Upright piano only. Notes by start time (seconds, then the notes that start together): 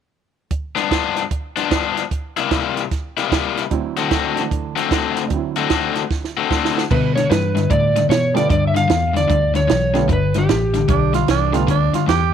3.70 D2 D3 F#3 C4 E4
4.36 D3 E3 A3 D4
5.25 D2 D3
5.30 F#3 C4
5.36 E4
8.34 G3 A3 B3 F4
9.94 G3 A3 B3 F4
11.53 G3 A3 B3 F4